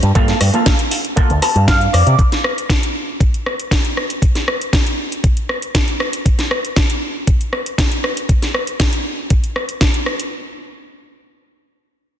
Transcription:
0.03 G2, closed hi-hat
0.15 G2 A#3 F4 A4, kick, closed hi-hat
0.28 snare, closed hi-hat
0.41 G2, cross-stick, open hi-hat
0.54 A#3 F4 A4, closed hi-hat
0.66 kick, snare, closed hi-hat
0.79 closed hi-hat
0.91 muted clean electric guitar stroke, open hi-hat
1.05 closed hi-hat
1.16 A#3 F4 A4, kick, closed hi-hat
1.30 D2, closed hi-hat
1.42 A5, muted clean electric guitar stroke, cross-stick, open hi-hat
1.55 G2, muted clean electric guitar stroke, closed hi-hat
1.68 F5, kick, snare, closed hi-hat
1.81 closed hi-hat
1.93 F2 D5, muted clean electric guitar stroke, cross-stick, open hi-hat
2.06 C3, closed hi-hat
2.19 kick, closed hi-hat
2.32 snare, closed hi-hat
2.44 cross-stick
2.58 closed hi-hat
2.70 kick, snare, closed hi-hat
2.83 closed hi-hat
3.20 kick, closed hi-hat
3.34 closed hi-hat
3.46 cross-stick
3.60 closed hi-hat
3.71 kick, snare, closed hi-hat
3.85 closed hi-hat
3.97 cross-stick
4.10 closed hi-hat
4.22 kick, closed hi-hat
4.35 snare, closed hi-hat
4.48 cross-stick
4.61 closed hi-hat
4.73 kick, snare, closed hi-hat
4.87 closed hi-hat
5.12 closed hi-hat
5.24 kick, closed hi-hat
5.37 closed hi-hat
5.49 cross-stick
5.62 closed hi-hat
5.75 kick, snare, closed hi-hat
5.88 closed hi-hat
6.00 cross-stick
6.13 closed hi-hat
6.26 kick, closed hi-hat
6.39 snare, closed hi-hat
6.51 cross-stick
6.65 closed hi-hat
6.76 kick, snare, closed hi-hat
6.90 closed hi-hat
7.27 kick, closed hi-hat
7.41 closed hi-hat
7.53 cross-stick
7.66 closed hi-hat
7.78 kick, snare, closed hi-hat
7.92 closed hi-hat
8.04 cross-stick
8.17 closed hi-hat
8.29 kick, closed hi-hat
8.42 snare, closed hi-hat
8.54 cross-stick
8.67 closed hi-hat
8.80 kick, snare, closed hi-hat
8.93 closed hi-hat
9.30 kick, closed hi-hat
9.44 closed hi-hat
9.56 cross-stick
9.69 closed hi-hat
9.81 kick, snare, closed hi-hat
9.94 closed hi-hat
10.06 cross-stick
10.20 closed hi-hat

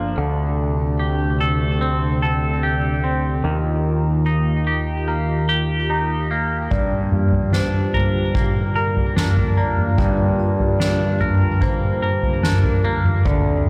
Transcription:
Already playing: G1 F3 A#3 D4 A4
0.17 D2 C3 D3 A3 G4
0.99 G4
1.41 A4
1.81 C4
2.22 A4
2.63 G4
3.04 C4
3.44 D#2 D#3 A#3 F4
4.26 D#4
4.67 G4
5.08 A#3
5.49 G4
5.90 D#4
6.31 A#3
6.71 G2 D3 F4 D5, kick, floor tom
7.12 mid tom
7.32 floor tom
7.53 D4 C5, snare
7.94 A#4, floor tom
8.35 A#3, kick
8.76 A#4
8.97 floor tom
9.16 D4, snare, mid tom
9.37 floor tom
9.57 A#3 D5
9.78 mid tom
9.98 G2 D5, kick, floor tom
10.39 D5
10.60 floor tom
10.80 D4, snare
11.21 A#4, floor tom, mid tom
11.61 A#3 C5, kick
12.02 A#4
12.23 floor tom
12.43 D4 A#4, snare, mid tom
12.63 floor tom
12.84 A#3
13.05 mid tom
13.25 D2 D3 A3 C4 D5, kick, floor tom
13.66 mid tom

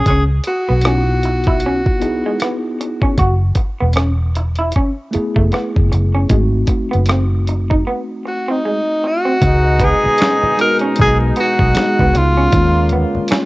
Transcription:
0.06 C#2 G#4, kick, closed hi-hat
0.10 C#4
0.44 F#4, muted clean electric guitar stroke, closed hi-hat
0.69 B1 B3
0.81 B3 D#4, cross-stick, closed hi-hat
0.86 C#4 E4 F4
0.93 F#4
1.23 muted clean electric guitar stroke, closed hi-hat
1.44 E4, kick, closed hi-hat
1.60 closed hi-hat
1.66 C#4
1.86 kick
2.00 B3 D#4 E4 G#4, muted clean electric guitar stroke, closed hi-hat
2.26 G#3
2.40 B3, cross-stick, closed hi-hat
2.81 muted clean electric guitar stroke, closed hi-hat
3.02 C#4, kick
3.18 F#1 F#4, kick, closed hi-hat
3.55 muted clean electric guitar stroke, kick, closed hi-hat
3.81 E1 B3
3.93 C#4, cross-stick, closed hi-hat
4.35 muted clean electric guitar stroke, closed hi-hat
4.56 E4, closed hi-hat
4.72 closed hi-hat
4.76 C#4, kick
5.11 A3 B3 E4 G#4, muted clean electric guitar stroke, closed hi-hat
5.15 muted fingered electric bass stroke
5.36 F#1 A3, kick
5.52 B3, cross-stick, closed hi-hat
5.76 F#1, kick
5.92 F#1, muted clean electric guitar stroke, closed hi-hat
6.14 C#4
6.29 G#1 G#3 A3 C4 D#4 F#4, kick, closed hi-hat
6.67 muted clean electric guitar stroke, kick, closed hi-hat
6.91 F#1 B3, closed hi-hat
7.06 C4, cross-stick, closed hi-hat
7.47 muted clean electric guitar stroke, closed hi-hat
7.70 D#4, kick
7.87 B3
8.25 F#4, muted clean electric guitar stroke
8.48 C4 D#4
8.65 G#3
9.04 F#4, muted clean electric guitar stroke
9.25 C4
9.42 C#2 B2 G#3 D#4, kick, closed hi-hat, low conga
9.64 muted conga
9.79 B3, kick, closed hi-hat, high conga
9.84 G#4
10.04 muted fingered electric bass stroke, high conga
10.18 C#4, snare, closed hi-hat
10.43 high conga, low conga
10.57 G#3 B3 D#4 F#4 A#4, muted clean electric guitar stroke, closed hi-hat
10.79 C#4, closed hi-hat
10.96 kick, closed hi-hat, muted conga, high conga
11.01 B1 G#4
11.21 muted conga
11.36 B3, closed hi-hat
11.40 F#4
11.59 B1, kick
11.74 G#3 B3 D#4 G#4, snare, closed hi-hat
11.99 C#2 B3, kick
12.14 C#2 F4, muted clean electric guitar stroke, closed hi-hat, low conga
12.37 C#4
12.51 D#2 C#3 G#3 A#3 C#4 F4, kick, closed hi-hat, muted conga, low conga
12.75 muted conga
12.89 B3, closed hi-hat, high conga
13.15 muted fingered electric bass stroke, high conga
13.28 C#4, snare, closed hi-hat, muted conga

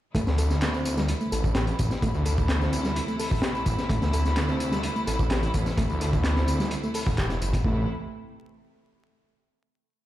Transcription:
0.15 A1 C3 E3 A3 E4, kick, closed hi-hat, tambourine
0.27 D2, snare, tambourine
0.38 A4, closed hi-hat, tambourine
0.50 snare, tambourine
0.61 snare, clap, closed hi-hat, tambourine
0.74 C4, tambourine
0.85 closed hi-hat, tambourine
0.97 G3, snare, tambourine
1.08 closed hi-hat, tambourine
1.21 A3, tambourine
1.32 A1 A4, closed hi-hat, tambourine
1.44 kick, tambourine
1.55 G4, snare, clap, closed hi-hat, tambourine
1.67 closed hi-hat, tambourine
1.79 A1, kick, closed hi-hat, tambourine
1.91 snare, tambourine
2.02 A1 A3, kick, closed hi-hat, tambourine
2.14 D2, tambourine
2.26 A4, closed hi-hat, tambourine
2.38 kick
2.49 snare, clap, closed hi-hat, tambourine
2.61 C4, snare, tambourine
2.73 closed hi-hat, tambourine
2.84 G3, snare, tambourine
2.96 closed hi-hat, tambourine
3.08 A3, tambourine
3.20 A4, open hi-hat, tambourine
3.31 kick, tambourine
3.42 G4, snare, clap, closed hi-hat, tambourine
3.55 tambourine
3.66 A1, kick, closed hi-hat, tambourine
3.78 snare, tambourine
3.89 A1 A3, kick, closed hi-hat, tambourine
4.02 D2, snare, tambourine
4.13 A4, closed hi-hat, tambourine
4.25 snare, tambourine
4.36 snare, clap, closed hi-hat, tambourine
4.49 C4, tambourine
4.60 closed hi-hat, tambourine
4.72 G3, snare, tambourine
4.83 closed hi-hat, tambourine
4.96 A3, tambourine
5.07 A1 A4, closed hi-hat, tambourine
5.19 kick, tambourine
5.30 G4, snare, clap, closed hi-hat, tambourine
5.43 closed hi-hat, tambourine
5.54 A1, kick, closed hi-hat, tambourine
5.66 snare, tambourine
5.77 A1 A3, kick, closed hi-hat, tambourine
5.90 D2, tambourine
6.01 A4, closed hi-hat, tambourine
6.13 kick, tambourine
6.24 snare, clap, closed hi-hat, tambourine
6.36 C4, snare, tambourine
6.48 closed hi-hat, tambourine
6.60 G3, snare, tambourine
6.71 closed hi-hat, tambourine
6.83 A3, tambourine
6.94 A4, open hi-hat, tambourine
7.07 E1, kick
7.17 E1 G4, kick, clap, closed hi-hat, tambourine
7.29 snare, tambourine
7.42 G1, closed hi-hat, tambourine
7.53 kick, closed hi-hat, tambourine
7.64 A1 C3 E3 A3 E4, kick

